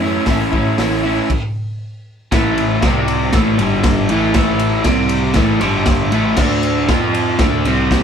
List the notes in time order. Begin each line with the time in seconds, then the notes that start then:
Already playing: F#2 E3
0.02 C#4 E4
0.07 A3
0.25 A1 A2 E3 A3 C#4, kick, snare, open hi-hat
0.30 E4
0.52 C#4 E4, kick
0.56 A3
0.77 A1 E3 A3 C#4, snare, open hi-hat
0.82 E4
1.03 A3 C#4 E4
1.07 A2 E3
1.30 kick, crash
2.32 A1 A2 E3 A3, kick, snare, ride
2.58 ride
2.82 C2 C3 G3 C4, kick, snare, ride
3.08 ride
3.33 A1 A2 E3 A3, kick, snare, ride
3.58 G1 G2 D3 G3, ride
3.84 kick, snare, ride
4.09 A1 A2 E3 A3, ride
4.34 A1 A2 E3 A3, kick, snare, ride
4.59 ride
4.84 C2 C3 G3 C4, kick, snare, ride
5.09 ride
5.34 A1 A2 E3 A3, kick, snare, ride
5.60 G1 G2 D3 G3, ride
5.86 kick, snare, ride
6.11 A1 A2 E3 A3, ride
6.37 D2 D3 A3 D4, kick, snare, crash
6.63 ride
6.89 F2 F3 C4 F4, kick, snare, ride
7.14 ride
7.39 D2 D3 A3 D4, kick, snare, ride
7.65 C2 C3 G3 C4, ride
7.91 kick, snare, ride